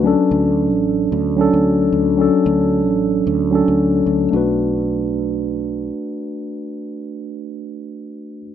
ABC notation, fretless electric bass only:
X:1
M:4/4
L:1/16
Q:"Swing 16ths" 1/4=112
K:Bm
V:1 name="Fretless electric bass" clef=bass
D,, z D,,3 A,,,3 D,,3 D,,3 D,,2- | D,, z D,,3 A,,,3 D,,3 D,,3 D,,2 | B,,,12 z4 | z16 |]